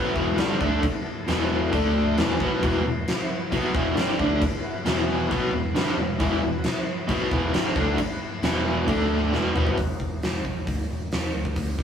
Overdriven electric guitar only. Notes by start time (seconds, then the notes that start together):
Already playing: B2 F#3 B3
0.15 E2 B2 E3
0.39 G2 D3 G3
0.60 D3 A3 D4
1.28 E2 B2 E3
1.73 D3 A3 D4
2.18 E2 B2 E3
2.40 B2 F#3 B3
2.62 E2 B2 E3
2.84 E2 B2
3.51 B2 F#3 B3
3.74 E2 B2 E3
3.96 G2 D3 G3
4.19 D3 A3 D4
4.85 E2 B2 E3
5.30 B2 F#3 B3
5.53 E2 B2
5.75 G2 D3 G3
5.98 E2 B2
6.20 E2 B2 E3
6.42 E2 B2
7.08 B2 F#3 B3
7.32 E2 B2 E3
7.54 G2 D3 G3
7.76 D3 A3 D4
8.43 E2 B2 E3
8.87 D3 A3 D4
9.32 E2 B2 E3
9.54 B2 F#3 B3